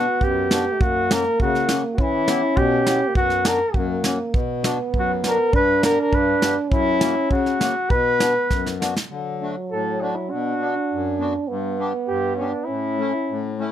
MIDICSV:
0, 0, Header, 1, 5, 480
1, 0, Start_track
1, 0, Key_signature, 2, "minor"
1, 0, Tempo, 592300
1, 653, Time_signature, 2, 2, 24, 8
1, 6408, Tempo, 598205
1, 7374, Key_signature, 2, "major"
1, 11071, End_track
2, 0, Start_track
2, 0, Title_t, "Flugelhorn"
2, 0, Program_c, 0, 56
2, 0, Note_on_c, 0, 66, 117
2, 188, Note_on_c, 0, 67, 91
2, 200, Note_off_c, 0, 66, 0
2, 660, Note_on_c, 0, 66, 111
2, 672, Note_off_c, 0, 67, 0
2, 910, Note_on_c, 0, 70, 108
2, 922, Note_off_c, 0, 66, 0
2, 1139, Note_off_c, 0, 70, 0
2, 1146, Note_on_c, 0, 66, 107
2, 1475, Note_off_c, 0, 66, 0
2, 1571, Note_on_c, 0, 66, 71
2, 1626, Note_on_c, 0, 64, 127
2, 1639, Note_off_c, 0, 66, 0
2, 2085, Note_on_c, 0, 67, 103
2, 2097, Note_off_c, 0, 64, 0
2, 2560, Note_off_c, 0, 67, 0
2, 2567, Note_on_c, 0, 66, 115
2, 2813, Note_on_c, 0, 70, 108
2, 2826, Note_off_c, 0, 66, 0
2, 3040, Note_on_c, 0, 66, 83
2, 3052, Note_off_c, 0, 70, 0
2, 3405, Note_off_c, 0, 66, 0
2, 4045, Note_on_c, 0, 66, 93
2, 4147, Note_off_c, 0, 66, 0
2, 4283, Note_on_c, 0, 70, 107
2, 4488, Note_off_c, 0, 70, 0
2, 4505, Note_on_c, 0, 71, 127
2, 4725, Note_off_c, 0, 71, 0
2, 4741, Note_on_c, 0, 70, 123
2, 4846, Note_off_c, 0, 70, 0
2, 4875, Note_on_c, 0, 70, 100
2, 4978, Note_on_c, 0, 71, 102
2, 4990, Note_off_c, 0, 70, 0
2, 5333, Note_off_c, 0, 71, 0
2, 5452, Note_on_c, 0, 64, 118
2, 5895, Note_off_c, 0, 64, 0
2, 5929, Note_on_c, 0, 66, 101
2, 6404, Note_on_c, 0, 71, 127
2, 6416, Note_off_c, 0, 66, 0
2, 7135, Note_off_c, 0, 71, 0
2, 7858, Note_on_c, 0, 69, 92
2, 8093, Note_on_c, 0, 62, 80
2, 8105, Note_off_c, 0, 69, 0
2, 8208, Note_on_c, 0, 64, 68
2, 8220, Note_off_c, 0, 62, 0
2, 8327, Note_on_c, 0, 66, 94
2, 8339, Note_off_c, 0, 64, 0
2, 9049, Note_off_c, 0, 66, 0
2, 9757, Note_on_c, 0, 67, 90
2, 9979, Note_off_c, 0, 67, 0
2, 9984, Note_on_c, 0, 61, 78
2, 10090, Note_on_c, 0, 62, 71
2, 10102, Note_off_c, 0, 61, 0
2, 10210, Note_on_c, 0, 64, 95
2, 10222, Note_off_c, 0, 62, 0
2, 10954, Note_off_c, 0, 64, 0
2, 11071, End_track
3, 0, Start_track
3, 0, Title_t, "Accordion"
3, 0, Program_c, 1, 21
3, 180, Note_on_c, 1, 42, 82
3, 409, Note_on_c, 1, 59, 61
3, 421, Note_on_c, 1, 62, 58
3, 426, Note_on_c, 1, 66, 59
3, 519, Note_off_c, 1, 59, 0
3, 525, Note_off_c, 1, 62, 0
3, 527, Note_off_c, 1, 66, 0
3, 536, Note_off_c, 1, 42, 0
3, 654, Note_on_c, 1, 42, 67
3, 893, Note_on_c, 1, 58, 61
3, 897, Note_on_c, 1, 61, 61
3, 910, Note_on_c, 1, 66, 63
3, 1001, Note_off_c, 1, 58, 0
3, 1004, Note_off_c, 1, 61, 0
3, 1010, Note_off_c, 1, 66, 0
3, 1013, Note_off_c, 1, 42, 0
3, 1139, Note_on_c, 1, 49, 86
3, 1368, Note_on_c, 1, 58, 60
3, 1378, Note_on_c, 1, 61, 53
3, 1383, Note_on_c, 1, 66, 63
3, 1477, Note_off_c, 1, 58, 0
3, 1482, Note_off_c, 1, 61, 0
3, 1485, Note_off_c, 1, 66, 0
3, 1493, Note_off_c, 1, 49, 0
3, 1600, Note_on_c, 1, 52, 74
3, 1843, Note_on_c, 1, 59, 61
3, 1848, Note_on_c, 1, 64, 53
3, 1855, Note_on_c, 1, 67, 77
3, 1952, Note_off_c, 1, 59, 0
3, 1955, Note_off_c, 1, 64, 0
3, 1959, Note_off_c, 1, 67, 0
3, 1960, Note_off_c, 1, 52, 0
3, 2080, Note_on_c, 1, 47, 93
3, 2325, Note_on_c, 1, 59, 58
3, 2332, Note_on_c, 1, 64, 52
3, 2334, Note_on_c, 1, 67, 59
3, 2431, Note_off_c, 1, 59, 0
3, 2434, Note_off_c, 1, 64, 0
3, 2435, Note_off_c, 1, 67, 0
3, 2437, Note_off_c, 1, 47, 0
3, 2561, Note_on_c, 1, 42, 71
3, 2790, Note_on_c, 1, 59, 60
3, 2803, Note_on_c, 1, 62, 57
3, 2812, Note_on_c, 1, 66, 64
3, 2902, Note_off_c, 1, 59, 0
3, 2909, Note_off_c, 1, 62, 0
3, 2913, Note_off_c, 1, 66, 0
3, 2918, Note_off_c, 1, 42, 0
3, 3030, Note_on_c, 1, 42, 86
3, 3274, Note_on_c, 1, 58, 56
3, 3282, Note_on_c, 1, 61, 45
3, 3286, Note_on_c, 1, 66, 57
3, 3387, Note_off_c, 1, 58, 0
3, 3390, Note_off_c, 1, 61, 0
3, 3393, Note_off_c, 1, 66, 0
3, 3396, Note_off_c, 1, 42, 0
3, 3513, Note_on_c, 1, 47, 74
3, 3751, Note_on_c, 1, 59, 72
3, 3760, Note_on_c, 1, 62, 55
3, 3767, Note_on_c, 1, 66, 81
3, 3868, Note_off_c, 1, 59, 0
3, 3872, Note_off_c, 1, 62, 0
3, 3875, Note_off_c, 1, 66, 0
3, 3880, Note_off_c, 1, 47, 0
3, 4001, Note_on_c, 1, 42, 87
3, 4239, Note_on_c, 1, 59, 56
3, 4253, Note_on_c, 1, 62, 49
3, 4259, Note_on_c, 1, 66, 63
3, 4352, Note_off_c, 1, 59, 0
3, 4359, Note_off_c, 1, 62, 0
3, 4362, Note_off_c, 1, 66, 0
3, 4364, Note_off_c, 1, 42, 0
3, 4480, Note_on_c, 1, 43, 77
3, 4726, Note_on_c, 1, 59, 57
3, 4731, Note_on_c, 1, 62, 49
3, 4739, Note_on_c, 1, 67, 57
3, 4835, Note_off_c, 1, 59, 0
3, 4838, Note_off_c, 1, 62, 0
3, 4841, Note_off_c, 1, 67, 0
3, 4842, Note_off_c, 1, 43, 0
3, 4963, Note_on_c, 1, 43, 83
3, 5209, Note_on_c, 1, 59, 65
3, 5214, Note_on_c, 1, 62, 52
3, 5220, Note_on_c, 1, 67, 67
3, 5315, Note_off_c, 1, 59, 0
3, 5318, Note_off_c, 1, 62, 0
3, 5320, Note_off_c, 1, 67, 0
3, 5322, Note_off_c, 1, 43, 0
3, 5433, Note_on_c, 1, 42, 78
3, 5676, Note_on_c, 1, 58, 62
3, 5686, Note_on_c, 1, 61, 58
3, 5694, Note_on_c, 1, 66, 56
3, 5788, Note_off_c, 1, 58, 0
3, 5793, Note_off_c, 1, 61, 0
3, 5797, Note_off_c, 1, 42, 0
3, 5797, Note_off_c, 1, 66, 0
3, 5915, Note_on_c, 1, 49, 94
3, 6153, Note_on_c, 1, 58, 65
3, 6159, Note_on_c, 1, 61, 56
3, 6171, Note_on_c, 1, 66, 67
3, 6268, Note_off_c, 1, 58, 0
3, 6270, Note_off_c, 1, 61, 0
3, 6277, Note_off_c, 1, 66, 0
3, 6279, Note_off_c, 1, 49, 0
3, 6408, Note_on_c, 1, 47, 75
3, 6637, Note_on_c, 1, 59, 59
3, 6644, Note_on_c, 1, 62, 53
3, 6651, Note_on_c, 1, 66, 65
3, 6750, Note_off_c, 1, 59, 0
3, 6754, Note_off_c, 1, 62, 0
3, 6757, Note_off_c, 1, 66, 0
3, 6767, Note_off_c, 1, 47, 0
3, 6884, Note_on_c, 1, 42, 81
3, 7123, Note_on_c, 1, 59, 69
3, 7131, Note_on_c, 1, 62, 51
3, 7136, Note_on_c, 1, 66, 70
3, 7237, Note_off_c, 1, 59, 0
3, 7240, Note_off_c, 1, 62, 0
3, 7243, Note_off_c, 1, 66, 0
3, 7249, Note_off_c, 1, 42, 0
3, 7366, Note_on_c, 1, 50, 72
3, 7615, Note_on_c, 1, 57, 55
3, 7624, Note_on_c, 1, 62, 46
3, 7629, Note_on_c, 1, 66, 57
3, 7724, Note_off_c, 1, 57, 0
3, 7728, Note_off_c, 1, 62, 0
3, 7730, Note_off_c, 1, 50, 0
3, 7731, Note_off_c, 1, 66, 0
3, 7856, Note_on_c, 1, 45, 72
3, 8097, Note_on_c, 1, 57, 52
3, 8103, Note_on_c, 1, 62, 48
3, 8107, Note_on_c, 1, 66, 53
3, 8203, Note_off_c, 1, 57, 0
3, 8206, Note_off_c, 1, 62, 0
3, 8208, Note_off_c, 1, 66, 0
3, 8213, Note_off_c, 1, 45, 0
3, 8346, Note_on_c, 1, 47, 72
3, 8579, Note_on_c, 1, 59, 51
3, 8582, Note_on_c, 1, 62, 46
3, 8593, Note_on_c, 1, 66, 59
3, 8683, Note_off_c, 1, 59, 0
3, 8684, Note_off_c, 1, 62, 0
3, 8690, Note_off_c, 1, 66, 0
3, 8697, Note_off_c, 1, 47, 0
3, 8830, Note_on_c, 1, 42, 77
3, 9042, Note_on_c, 1, 59, 60
3, 9049, Note_on_c, 1, 62, 56
3, 9061, Note_on_c, 1, 66, 70
3, 9151, Note_off_c, 1, 59, 0
3, 9155, Note_off_c, 1, 62, 0
3, 9161, Note_off_c, 1, 66, 0
3, 9175, Note_off_c, 1, 42, 0
3, 9282, Note_on_c, 1, 43, 80
3, 9522, Note_on_c, 1, 59, 67
3, 9525, Note_on_c, 1, 62, 50
3, 9539, Note_on_c, 1, 67, 70
3, 9628, Note_off_c, 1, 59, 0
3, 9630, Note_off_c, 1, 62, 0
3, 9636, Note_off_c, 1, 67, 0
3, 9637, Note_off_c, 1, 43, 0
3, 9763, Note_on_c, 1, 43, 75
3, 10004, Note_on_c, 1, 59, 52
3, 10012, Note_on_c, 1, 62, 48
3, 10014, Note_on_c, 1, 67, 54
3, 10107, Note_off_c, 1, 59, 0
3, 10112, Note_off_c, 1, 62, 0
3, 10113, Note_off_c, 1, 67, 0
3, 10117, Note_off_c, 1, 43, 0
3, 10238, Note_on_c, 1, 45, 65
3, 10480, Note_on_c, 1, 57, 50
3, 10489, Note_on_c, 1, 61, 41
3, 10498, Note_on_c, 1, 64, 65
3, 10587, Note_off_c, 1, 57, 0
3, 10592, Note_off_c, 1, 61, 0
3, 10596, Note_off_c, 1, 64, 0
3, 10597, Note_off_c, 1, 45, 0
3, 10730, Note_on_c, 1, 45, 74
3, 10966, Note_on_c, 1, 57, 64
3, 10975, Note_on_c, 1, 61, 45
3, 10980, Note_on_c, 1, 64, 64
3, 11071, Note_off_c, 1, 45, 0
3, 11071, Note_off_c, 1, 57, 0
3, 11071, Note_off_c, 1, 61, 0
3, 11071, Note_off_c, 1, 64, 0
3, 11071, End_track
4, 0, Start_track
4, 0, Title_t, "Euphonium"
4, 0, Program_c, 2, 58
4, 0, Note_on_c, 2, 59, 98
4, 592, Note_on_c, 2, 57, 63
4, 604, Note_off_c, 2, 59, 0
4, 653, Note_on_c, 2, 58, 85
4, 666, Note_off_c, 2, 57, 0
4, 1607, Note_on_c, 2, 61, 107
4, 1619, Note_off_c, 2, 58, 0
4, 2505, Note_on_c, 2, 58, 60
4, 2517, Note_off_c, 2, 61, 0
4, 2563, Note_on_c, 2, 59, 94
4, 2576, Note_off_c, 2, 58, 0
4, 2831, Note_off_c, 2, 59, 0
4, 3040, Note_on_c, 2, 58, 87
4, 3522, Note_on_c, 2, 59, 106
4, 3534, Note_off_c, 2, 58, 0
4, 4485, Note_on_c, 2, 62, 122
4, 4497, Note_off_c, 2, 59, 0
4, 5434, Note_on_c, 2, 61, 109
4, 5446, Note_off_c, 2, 62, 0
4, 6190, Note_off_c, 2, 61, 0
4, 6403, Note_on_c, 2, 59, 88
4, 7102, Note_off_c, 2, 59, 0
4, 7372, Note_on_c, 2, 54, 81
4, 8332, Note_on_c, 2, 62, 96
4, 8344, Note_off_c, 2, 54, 0
4, 9275, Note_on_c, 2, 59, 107
4, 9287, Note_off_c, 2, 62, 0
4, 10231, Note_on_c, 2, 61, 85
4, 10243, Note_off_c, 2, 59, 0
4, 10965, Note_off_c, 2, 61, 0
4, 11071, End_track
5, 0, Start_track
5, 0, Title_t, "Drums"
5, 171, Note_on_c, 9, 36, 65
5, 252, Note_off_c, 9, 36, 0
5, 412, Note_on_c, 9, 38, 80
5, 412, Note_on_c, 9, 44, 44
5, 493, Note_off_c, 9, 38, 0
5, 493, Note_off_c, 9, 44, 0
5, 654, Note_on_c, 9, 36, 92
5, 735, Note_off_c, 9, 36, 0
5, 897, Note_on_c, 9, 38, 91
5, 897, Note_on_c, 9, 44, 48
5, 978, Note_off_c, 9, 38, 0
5, 978, Note_off_c, 9, 44, 0
5, 1133, Note_on_c, 9, 36, 70
5, 1214, Note_off_c, 9, 36, 0
5, 1257, Note_on_c, 9, 38, 29
5, 1338, Note_off_c, 9, 38, 0
5, 1366, Note_on_c, 9, 38, 83
5, 1366, Note_on_c, 9, 44, 43
5, 1448, Note_off_c, 9, 38, 0
5, 1448, Note_off_c, 9, 44, 0
5, 1607, Note_on_c, 9, 36, 81
5, 1688, Note_off_c, 9, 36, 0
5, 1846, Note_on_c, 9, 38, 77
5, 1846, Note_on_c, 9, 44, 45
5, 1927, Note_off_c, 9, 38, 0
5, 1927, Note_off_c, 9, 44, 0
5, 2082, Note_on_c, 9, 36, 73
5, 2163, Note_off_c, 9, 36, 0
5, 2322, Note_on_c, 9, 38, 80
5, 2322, Note_on_c, 9, 44, 44
5, 2403, Note_off_c, 9, 38, 0
5, 2403, Note_off_c, 9, 44, 0
5, 2556, Note_on_c, 9, 36, 78
5, 2637, Note_off_c, 9, 36, 0
5, 2674, Note_on_c, 9, 38, 26
5, 2755, Note_off_c, 9, 38, 0
5, 2794, Note_on_c, 9, 38, 90
5, 2794, Note_on_c, 9, 44, 52
5, 2875, Note_off_c, 9, 38, 0
5, 2875, Note_off_c, 9, 44, 0
5, 3033, Note_on_c, 9, 36, 69
5, 3114, Note_off_c, 9, 36, 0
5, 3273, Note_on_c, 9, 38, 81
5, 3273, Note_on_c, 9, 44, 41
5, 3354, Note_off_c, 9, 38, 0
5, 3354, Note_off_c, 9, 44, 0
5, 3518, Note_on_c, 9, 36, 83
5, 3599, Note_off_c, 9, 36, 0
5, 3761, Note_on_c, 9, 38, 84
5, 3761, Note_on_c, 9, 44, 49
5, 3842, Note_off_c, 9, 38, 0
5, 3842, Note_off_c, 9, 44, 0
5, 4002, Note_on_c, 9, 36, 58
5, 4083, Note_off_c, 9, 36, 0
5, 4245, Note_on_c, 9, 38, 70
5, 4245, Note_on_c, 9, 44, 44
5, 4326, Note_off_c, 9, 38, 0
5, 4326, Note_off_c, 9, 44, 0
5, 4484, Note_on_c, 9, 36, 80
5, 4565, Note_off_c, 9, 36, 0
5, 4726, Note_on_c, 9, 38, 94
5, 4726, Note_on_c, 9, 44, 47
5, 4807, Note_off_c, 9, 38, 0
5, 4807, Note_off_c, 9, 44, 0
5, 4965, Note_on_c, 9, 36, 66
5, 5046, Note_off_c, 9, 36, 0
5, 5204, Note_on_c, 9, 38, 83
5, 5204, Note_on_c, 9, 44, 46
5, 5285, Note_off_c, 9, 38, 0
5, 5285, Note_off_c, 9, 44, 0
5, 5442, Note_on_c, 9, 36, 82
5, 5523, Note_off_c, 9, 36, 0
5, 5681, Note_on_c, 9, 38, 98
5, 5681, Note_on_c, 9, 44, 47
5, 5762, Note_off_c, 9, 38, 0
5, 5762, Note_off_c, 9, 44, 0
5, 5921, Note_on_c, 9, 36, 71
5, 6002, Note_off_c, 9, 36, 0
5, 6046, Note_on_c, 9, 38, 32
5, 6127, Note_off_c, 9, 38, 0
5, 6165, Note_on_c, 9, 38, 81
5, 6165, Note_on_c, 9, 44, 47
5, 6246, Note_off_c, 9, 38, 0
5, 6246, Note_off_c, 9, 44, 0
5, 6404, Note_on_c, 9, 36, 81
5, 6484, Note_off_c, 9, 36, 0
5, 6646, Note_on_c, 9, 38, 96
5, 6646, Note_on_c, 9, 44, 44
5, 6726, Note_off_c, 9, 38, 0
5, 6726, Note_off_c, 9, 44, 0
5, 6888, Note_on_c, 9, 36, 61
5, 6888, Note_on_c, 9, 38, 51
5, 6969, Note_off_c, 9, 36, 0
5, 6969, Note_off_c, 9, 38, 0
5, 7015, Note_on_c, 9, 38, 53
5, 7095, Note_off_c, 9, 38, 0
5, 7140, Note_on_c, 9, 38, 63
5, 7140, Note_on_c, 9, 44, 53
5, 7220, Note_off_c, 9, 38, 0
5, 7220, Note_off_c, 9, 44, 0
5, 7256, Note_on_c, 9, 38, 63
5, 7337, Note_off_c, 9, 38, 0
5, 11071, End_track
0, 0, End_of_file